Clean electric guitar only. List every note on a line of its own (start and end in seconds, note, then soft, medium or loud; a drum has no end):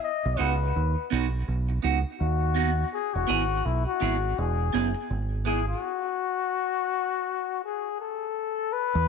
0.37 0.52 B3 medium
0.37 0.53 D#4 medium
0.37 0.53 F#4 medium
1.10 1.25 B3 medium
1.10 1.25 D#4 medium
1.10 1.26 F#4 medium
1.69 muted clean electric guitar stroke soft
1.82 1.97 B3 medium
1.82 1.98 D#4 medium
1.82 1.98 F#4 medium
2.55 2.70 B3 medium
2.55 2.70 D#4 medium
2.55 2.70 F#4 medium
3.27 3.42 B3 medium
3.27 3.42 E4 medium
3.27 3.43 G#4 loud
4.00 4.15 B3 medium
4.00 4.16 E4 medium
4.00 4.16 G#4 loud
4.73 4.88 B3 medium
4.73 4.88 E4 medium
4.73 4.88 G#4 medium
4.95 muted clean electric guitar stroke soft
5.45 5.60 B3 medium
5.45 5.60 E4 medium
5.45 5.61 G#4 medium